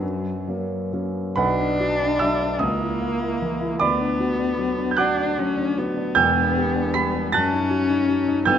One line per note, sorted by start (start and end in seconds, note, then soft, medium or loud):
0.00 0.46 F#2 medium
0.00 0.66 F#3 medium
0.00 0.89 B4 medium
0.00 0.89 D5 medium
0.00 0.92 F#5 medium
0.47 0.90 F#3 soft
0.47 0.90 A#3 soft
0.47 0.91 C#4 soft
0.93 1.35 F#3 soft
0.93 1.34 A#3 soft
0.93 1.35 C#4 soft
1.36 2.58 B1 medium
1.36 2.65 D4 medium
1.36 2.17 B4 medium
1.36 2.17 F#5 medium
1.36 2.20 B5 medium
1.59 1.93 D4 medium
1.80 2.13 F#4 soft
2.00 2.33 D4 medium
2.19 2.54 F#3 medium
2.19 2.59 E5 medium
2.19 2.61 E6 medium
2.40 2.62 D4 soft
2.59 3.77 C#2 medium
2.59 3.77 D#5 medium
2.59 3.81 D#6 medium
2.63 3.82 A#3 medium
2.80 3.14 E4 soft
3.02 3.34 A#3 medium
3.22 3.54 E4 medium
3.42 3.74 E3 soft
3.61 3.81 E4 medium
3.80 6.12 D2 medium
3.80 5.00 B3 medium
3.80 4.87 D5 medium
3.80 4.87 B5 medium
3.80 4.91 D6 medium
4.01 4.32 D4 medium
4.20 4.52 F#4 medium
4.39 4.71 D4 medium
4.58 4.90 F#3 soft
4.78 5.10 D4 soft
4.91 4.98 G6 medium
4.97 5.41 D4 medium
4.97 5.30 F#4 medium
4.97 6.13 F#5 medium
4.97 6.12 D6 medium
4.97 6.16 F#6 medium
5.18 5.50 D4 soft
5.39 5.70 F#3 medium
5.39 5.80 C#4 medium
5.57 5.89 D4 soft
5.78 7.34 B3 medium
5.78 6.09 F#4 medium
5.97 6.17 D4 medium
6.15 7.29 E1 medium
6.15 7.29 E2 medium
6.15 6.91 G5 medium
6.15 6.91 E6 medium
6.15 6.94 G6 loud
6.37 6.68 D4 soft
6.57 6.88 G4 medium
6.76 7.07 D4 medium
6.94 7.25 G3 medium
6.94 7.30 B5 medium
6.94 7.32 B6 loud
7.15 7.34 D4 soft
7.32 8.43 F#2 medium
7.32 8.44 C#4 medium
7.32 8.42 A5 medium
7.32 8.43 F#6 medium
7.32 8.46 A6 loud
7.53 7.82 D#4 soft
7.70 8.00 F#4 medium
7.90 8.20 D#4 medium
8.09 8.39 F#3 soft
8.28 8.46 D#4 medium
8.45 8.59 G1 medium
8.45 8.59 G2 medium
8.45 8.59 B3 medium
8.45 8.59 G5 medium
8.45 8.59 E6 medium
8.45 8.59 G6 loud